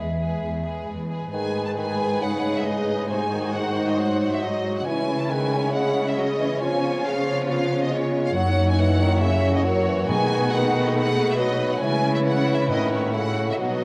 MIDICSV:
0, 0, Header, 1, 10, 480
1, 0, Start_track
1, 0, Tempo, 443787
1, 1431, Time_signature, 4, 2, 24, 8
1, 4784, Tempo, 437637
1, 9584, Tempo, 431344
1, 12944, Tempo, 447427
1, 15113, End_track
2, 0, Start_track
2, 0, Title_t, "Violin section"
2, 0, Program_c, 0, 48
2, 0, Note_on_c, 0, 71, 24
2, 216, Note_off_c, 0, 71, 0
2, 235, Note_on_c, 0, 71, 24
2, 703, Note_off_c, 0, 71, 0
2, 714, Note_on_c, 0, 71, 23
2, 1179, Note_off_c, 0, 71, 0
2, 1192, Note_on_c, 0, 71, 30
2, 1427, Note_off_c, 0, 71, 0
2, 1440, Note_on_c, 0, 80, 55
2, 1772, Note_off_c, 0, 80, 0
2, 1799, Note_on_c, 0, 81, 49
2, 1846, Note_off_c, 0, 81, 0
2, 1921, Note_on_c, 0, 80, 60
2, 2391, Note_off_c, 0, 80, 0
2, 2398, Note_on_c, 0, 78, 56
2, 2756, Note_off_c, 0, 78, 0
2, 2770, Note_on_c, 0, 76, 43
2, 2875, Note_on_c, 0, 75, 50
2, 2881, Note_off_c, 0, 76, 0
2, 3342, Note_on_c, 0, 80, 53
2, 3350, Note_off_c, 0, 75, 0
2, 3813, Note_off_c, 0, 80, 0
2, 3818, Note_on_c, 0, 78, 54
2, 4183, Note_off_c, 0, 78, 0
2, 4193, Note_on_c, 0, 75, 49
2, 4310, Note_off_c, 0, 75, 0
2, 4317, Note_on_c, 0, 78, 52
2, 4670, Note_off_c, 0, 78, 0
2, 4674, Note_on_c, 0, 76, 49
2, 4786, Note_on_c, 0, 75, 54
2, 4787, Note_off_c, 0, 76, 0
2, 5142, Note_off_c, 0, 75, 0
2, 5156, Note_on_c, 0, 78, 48
2, 5261, Note_on_c, 0, 80, 58
2, 5266, Note_off_c, 0, 78, 0
2, 5616, Note_off_c, 0, 80, 0
2, 5618, Note_on_c, 0, 81, 56
2, 5741, Note_on_c, 0, 80, 65
2, 5742, Note_off_c, 0, 81, 0
2, 6227, Note_off_c, 0, 80, 0
2, 6232, Note_on_c, 0, 78, 59
2, 6585, Note_off_c, 0, 78, 0
2, 6602, Note_on_c, 0, 76, 53
2, 6716, Note_off_c, 0, 76, 0
2, 6716, Note_on_c, 0, 75, 55
2, 7189, Note_on_c, 0, 80, 62
2, 7192, Note_off_c, 0, 75, 0
2, 7662, Note_off_c, 0, 80, 0
2, 7673, Note_on_c, 0, 77, 60
2, 8030, Note_off_c, 0, 77, 0
2, 8041, Note_on_c, 0, 73, 51
2, 8145, Note_on_c, 0, 77, 66
2, 8154, Note_off_c, 0, 73, 0
2, 8503, Note_off_c, 0, 77, 0
2, 8505, Note_on_c, 0, 75, 58
2, 8614, Note_on_c, 0, 73, 60
2, 8621, Note_off_c, 0, 75, 0
2, 8979, Note_off_c, 0, 73, 0
2, 8983, Note_on_c, 0, 77, 57
2, 9099, Note_on_c, 0, 78, 64
2, 9102, Note_off_c, 0, 77, 0
2, 9455, Note_off_c, 0, 78, 0
2, 9472, Note_on_c, 0, 80, 64
2, 9582, Note_on_c, 0, 78, 66
2, 9585, Note_off_c, 0, 80, 0
2, 10064, Note_off_c, 0, 78, 0
2, 10064, Note_on_c, 0, 76, 63
2, 10413, Note_off_c, 0, 76, 0
2, 10429, Note_on_c, 0, 75, 60
2, 10526, Note_on_c, 0, 73, 67
2, 10541, Note_off_c, 0, 75, 0
2, 11001, Note_off_c, 0, 73, 0
2, 11023, Note_on_c, 0, 80, 81
2, 11491, Note_off_c, 0, 80, 0
2, 11510, Note_on_c, 0, 78, 69
2, 11867, Note_off_c, 0, 78, 0
2, 11882, Note_on_c, 0, 75, 60
2, 11992, Note_off_c, 0, 75, 0
2, 11995, Note_on_c, 0, 78, 75
2, 12340, Note_off_c, 0, 78, 0
2, 12368, Note_on_c, 0, 76, 69
2, 12465, Note_on_c, 0, 75, 64
2, 12474, Note_off_c, 0, 76, 0
2, 12818, Note_off_c, 0, 75, 0
2, 12833, Note_on_c, 0, 78, 61
2, 12941, Note_on_c, 0, 80, 73
2, 12948, Note_off_c, 0, 78, 0
2, 13287, Note_off_c, 0, 80, 0
2, 13300, Note_on_c, 0, 76, 56
2, 13346, Note_off_c, 0, 76, 0
2, 13416, Note_on_c, 0, 78, 65
2, 13645, Note_off_c, 0, 78, 0
2, 13659, Note_on_c, 0, 76, 59
2, 13890, Note_off_c, 0, 76, 0
2, 13900, Note_on_c, 0, 75, 63
2, 14126, Note_off_c, 0, 75, 0
2, 14134, Note_on_c, 0, 73, 55
2, 14363, Note_off_c, 0, 73, 0
2, 14373, Note_on_c, 0, 78, 64
2, 14723, Note_off_c, 0, 78, 0
2, 14747, Note_on_c, 0, 76, 50
2, 14792, Note_off_c, 0, 76, 0
2, 14859, Note_on_c, 0, 75, 52
2, 15113, Note_off_c, 0, 75, 0
2, 15113, End_track
3, 0, Start_track
3, 0, Title_t, "Flute"
3, 0, Program_c, 1, 73
3, 0, Note_on_c, 1, 76, 32
3, 953, Note_off_c, 1, 76, 0
3, 15113, End_track
4, 0, Start_track
4, 0, Title_t, "Clarinet"
4, 0, Program_c, 2, 71
4, 1440, Note_on_c, 2, 71, 34
4, 1885, Note_off_c, 2, 71, 0
4, 1917, Note_on_c, 2, 71, 43
4, 2160, Note_on_c, 2, 68, 41
4, 2176, Note_off_c, 2, 71, 0
4, 2397, Note_off_c, 2, 68, 0
4, 2403, Note_on_c, 2, 73, 33
4, 2887, Note_on_c, 2, 71, 37
4, 2903, Note_off_c, 2, 73, 0
4, 3343, Note_off_c, 2, 71, 0
4, 3349, Note_on_c, 2, 72, 34
4, 3816, Note_off_c, 2, 72, 0
4, 3830, Note_on_c, 2, 72, 38
4, 4766, Note_off_c, 2, 72, 0
4, 4779, Note_on_c, 2, 75, 37
4, 5264, Note_on_c, 2, 73, 37
4, 5280, Note_off_c, 2, 75, 0
4, 5748, Note_on_c, 2, 71, 45
4, 5765, Note_off_c, 2, 73, 0
4, 5995, Note_on_c, 2, 73, 43
4, 6011, Note_off_c, 2, 71, 0
4, 6227, Note_on_c, 2, 75, 39
4, 6243, Note_off_c, 2, 73, 0
4, 7185, Note_off_c, 2, 75, 0
4, 7191, Note_on_c, 2, 73, 47
4, 8597, Note_off_c, 2, 73, 0
4, 8624, Note_on_c, 2, 73, 54
4, 10662, Note_off_c, 2, 73, 0
4, 11008, Note_on_c, 2, 71, 48
4, 11965, Note_on_c, 2, 69, 51
4, 11982, Note_off_c, 2, 71, 0
4, 12440, Note_off_c, 2, 69, 0
4, 12447, Note_on_c, 2, 71, 46
4, 12926, Note_on_c, 2, 73, 49
4, 12943, Note_off_c, 2, 71, 0
4, 13881, Note_on_c, 2, 71, 44
4, 13897, Note_off_c, 2, 73, 0
4, 14356, Note_on_c, 2, 69, 42
4, 14372, Note_off_c, 2, 71, 0
4, 14846, Note_off_c, 2, 69, 0
4, 14855, Note_on_c, 2, 71, 41
4, 15113, Note_off_c, 2, 71, 0
4, 15113, End_track
5, 0, Start_track
5, 0, Title_t, "Violin section"
5, 0, Program_c, 3, 48
5, 0, Note_on_c, 3, 68, 24
5, 196, Note_off_c, 3, 68, 0
5, 209, Note_on_c, 3, 68, 27
5, 686, Note_off_c, 3, 68, 0
5, 699, Note_on_c, 3, 68, 21
5, 1165, Note_off_c, 3, 68, 0
5, 1178, Note_on_c, 3, 68, 24
5, 1410, Note_off_c, 3, 68, 0
5, 1423, Note_on_c, 3, 68, 39
5, 1424, Note_on_c, 3, 71, 41
5, 3301, Note_off_c, 3, 68, 0
5, 3302, Note_off_c, 3, 71, 0
5, 3354, Note_on_c, 3, 72, 37
5, 3359, Note_on_c, 3, 66, 41
5, 5219, Note_off_c, 3, 72, 0
5, 5222, Note_off_c, 3, 66, 0
5, 5259, Note_on_c, 3, 73, 41
5, 5267, Note_on_c, 3, 64, 44
5, 7148, Note_off_c, 3, 64, 0
5, 7196, Note_on_c, 3, 65, 46
5, 9061, Note_off_c, 3, 73, 0
5, 9065, Note_off_c, 3, 65, 0
5, 9111, Note_on_c, 3, 66, 53
5, 9111, Note_on_c, 3, 73, 49
5, 10976, Note_off_c, 3, 73, 0
5, 11016, Note_on_c, 3, 71, 54
5, 12902, Note_off_c, 3, 66, 0
5, 12946, Note_on_c, 3, 64, 59
5, 13842, Note_off_c, 3, 71, 0
5, 13890, Note_on_c, 3, 66, 46
5, 14807, Note_off_c, 3, 64, 0
5, 14860, Note_on_c, 3, 63, 45
5, 15113, Note_off_c, 3, 63, 0
5, 15113, Note_off_c, 3, 66, 0
5, 15113, End_track
6, 0, Start_track
6, 0, Title_t, "French horn section"
6, 0, Program_c, 4, 60
6, 1440, Note_on_c, 4, 68, 47
6, 1884, Note_off_c, 4, 68, 0
6, 1914, Note_on_c, 4, 71, 44
6, 2387, Note_off_c, 4, 71, 0
6, 2398, Note_on_c, 4, 63, 41
6, 2874, Note_off_c, 4, 63, 0
6, 2893, Note_on_c, 4, 68, 44
6, 3817, Note_off_c, 4, 68, 0
6, 3847, Note_on_c, 4, 63, 45
6, 4775, Note_off_c, 4, 63, 0
6, 4799, Note_on_c, 4, 66, 46
6, 5269, Note_off_c, 4, 66, 0
6, 5270, Note_on_c, 4, 64, 44
6, 5749, Note_off_c, 4, 64, 0
6, 5750, Note_on_c, 4, 68, 52
6, 7163, Note_off_c, 4, 68, 0
6, 7180, Note_on_c, 4, 65, 45
6, 7657, Note_off_c, 4, 65, 0
6, 7672, Note_on_c, 4, 68, 47
6, 8139, Note_off_c, 4, 68, 0
6, 8139, Note_on_c, 4, 65, 52
6, 8606, Note_off_c, 4, 65, 0
6, 8619, Note_on_c, 4, 65, 50
6, 9093, Note_off_c, 4, 65, 0
6, 9107, Note_on_c, 4, 63, 51
6, 9872, Note_off_c, 4, 63, 0
6, 10061, Note_on_c, 4, 61, 54
6, 10528, Note_off_c, 4, 61, 0
6, 10547, Note_on_c, 4, 70, 58
6, 11012, Note_off_c, 4, 70, 0
6, 11020, Note_on_c, 4, 68, 73
6, 12433, Note_off_c, 4, 68, 0
6, 12480, Note_on_c, 4, 66, 56
6, 12942, Note_on_c, 4, 64, 63
6, 12953, Note_off_c, 4, 66, 0
6, 14848, Note_off_c, 4, 64, 0
6, 14851, Note_on_c, 4, 66, 54
6, 15113, Note_off_c, 4, 66, 0
6, 15113, End_track
7, 0, Start_track
7, 0, Title_t, "Viola section"
7, 0, Program_c, 5, 48
7, 0, Note_on_c, 5, 56, 26
7, 214, Note_off_c, 5, 56, 0
7, 239, Note_on_c, 5, 56, 24
7, 699, Note_off_c, 5, 56, 0
7, 712, Note_on_c, 5, 56, 22
7, 1183, Note_off_c, 5, 56, 0
7, 1194, Note_on_c, 5, 56, 24
7, 1428, Note_off_c, 5, 56, 0
7, 1442, Note_on_c, 5, 56, 39
7, 1443, Note_on_c, 5, 63, 42
7, 5222, Note_off_c, 5, 56, 0
7, 5223, Note_off_c, 5, 63, 0
7, 5271, Note_on_c, 5, 56, 44
7, 5273, Note_on_c, 5, 61, 43
7, 7151, Note_off_c, 5, 56, 0
7, 7191, Note_on_c, 5, 59, 49
7, 9062, Note_off_c, 5, 59, 0
7, 9067, Note_off_c, 5, 61, 0
7, 9100, Note_on_c, 5, 58, 50
7, 9101, Note_on_c, 5, 64, 52
7, 10970, Note_off_c, 5, 58, 0
7, 10971, Note_off_c, 5, 64, 0
7, 11012, Note_on_c, 5, 57, 62
7, 11018, Note_on_c, 5, 63, 56
7, 12896, Note_off_c, 5, 57, 0
7, 12899, Note_off_c, 5, 63, 0
7, 12954, Note_on_c, 5, 56, 53
7, 12956, Note_on_c, 5, 61, 57
7, 13848, Note_off_c, 5, 56, 0
7, 13899, Note_on_c, 5, 57, 46
7, 14813, Note_off_c, 5, 57, 0
7, 14813, Note_off_c, 5, 61, 0
7, 14853, Note_on_c, 5, 54, 46
7, 14853, Note_on_c, 5, 59, 45
7, 15113, Note_off_c, 5, 54, 0
7, 15113, Note_off_c, 5, 59, 0
7, 15113, End_track
8, 0, Start_track
8, 0, Title_t, "Bassoon"
8, 0, Program_c, 6, 70
8, 1444, Note_on_c, 6, 51, 31
8, 1886, Note_off_c, 6, 51, 0
8, 1923, Note_on_c, 6, 51, 34
8, 2410, Note_on_c, 6, 49, 36
8, 2426, Note_off_c, 6, 51, 0
8, 3356, Note_off_c, 6, 49, 0
8, 3361, Note_on_c, 6, 48, 34
8, 3465, Note_off_c, 6, 48, 0
8, 3600, Note_on_c, 6, 51, 37
8, 3828, Note_off_c, 6, 51, 0
8, 3834, Note_on_c, 6, 51, 33
8, 4309, Note_on_c, 6, 54, 37
8, 4325, Note_off_c, 6, 51, 0
8, 4778, Note_off_c, 6, 54, 0
8, 4784, Note_on_c, 6, 54, 35
8, 5257, Note_on_c, 6, 52, 35
8, 5273, Note_off_c, 6, 54, 0
8, 5736, Note_on_c, 6, 51, 36
8, 5753, Note_off_c, 6, 52, 0
8, 6205, Note_on_c, 6, 49, 42
8, 6222, Note_off_c, 6, 51, 0
8, 6699, Note_off_c, 6, 49, 0
8, 6706, Note_on_c, 6, 54, 38
8, 6814, Note_off_c, 6, 54, 0
8, 6942, Note_on_c, 6, 52, 40
8, 7171, Note_off_c, 6, 52, 0
8, 7178, Note_on_c, 6, 53, 36
8, 7656, Note_off_c, 6, 53, 0
8, 7674, Note_on_c, 6, 53, 44
8, 8606, Note_off_c, 6, 53, 0
8, 8630, Note_on_c, 6, 56, 43
8, 9087, Note_on_c, 6, 54, 42
8, 9104, Note_off_c, 6, 56, 0
8, 9571, Note_off_c, 6, 54, 0
8, 9577, Note_on_c, 6, 52, 49
8, 9825, Note_on_c, 6, 51, 56
8, 9842, Note_off_c, 6, 52, 0
8, 10052, Note_on_c, 6, 49, 49
8, 10069, Note_off_c, 6, 51, 0
8, 10528, Note_on_c, 6, 54, 53
8, 10545, Note_off_c, 6, 49, 0
8, 10772, Note_off_c, 6, 54, 0
8, 10780, Note_on_c, 6, 52, 46
8, 11007, Note_off_c, 6, 52, 0
8, 11014, Note_on_c, 6, 51, 41
8, 11487, Note_off_c, 6, 51, 0
8, 11508, Note_on_c, 6, 51, 47
8, 12139, Note_off_c, 6, 51, 0
8, 12467, Note_on_c, 6, 54, 48
8, 12953, Note_on_c, 6, 52, 44
8, 12969, Note_off_c, 6, 54, 0
8, 13409, Note_off_c, 6, 52, 0
8, 13416, Note_on_c, 6, 52, 47
8, 13901, Note_on_c, 6, 51, 49
8, 13917, Note_off_c, 6, 52, 0
8, 14372, Note_on_c, 6, 49, 40
8, 14389, Note_off_c, 6, 51, 0
8, 14855, Note_off_c, 6, 49, 0
8, 14862, Note_on_c, 6, 54, 37
8, 15113, Note_off_c, 6, 54, 0
8, 15113, End_track
9, 0, Start_track
9, 0, Title_t, "Timpani"
9, 0, Program_c, 7, 47
9, 11022, Note_on_c, 7, 47, 49
9, 11698, Note_off_c, 7, 47, 0
9, 15113, End_track
10, 0, Start_track
10, 0, Title_t, "Cello section"
10, 0, Program_c, 8, 48
10, 0, Note_on_c, 8, 40, 29
10, 415, Note_off_c, 8, 40, 0
10, 478, Note_on_c, 8, 40, 33
10, 899, Note_off_c, 8, 40, 0
10, 958, Note_on_c, 8, 40, 33
10, 1378, Note_off_c, 8, 40, 0
10, 1433, Note_on_c, 8, 44, 42
10, 5218, Note_off_c, 8, 44, 0
10, 5267, Note_on_c, 8, 49, 45
10, 9065, Note_off_c, 8, 49, 0
10, 9110, Note_on_c, 8, 42, 54
10, 10982, Note_off_c, 8, 42, 0
10, 11021, Note_on_c, 8, 47, 55
10, 12945, Note_off_c, 8, 47, 0
10, 12950, Note_on_c, 8, 49, 56
10, 13870, Note_off_c, 8, 49, 0
10, 13892, Note_on_c, 8, 45, 48
10, 14853, Note_off_c, 8, 45, 0
10, 14859, Note_on_c, 8, 47, 43
10, 15113, Note_off_c, 8, 47, 0
10, 15113, End_track
0, 0, End_of_file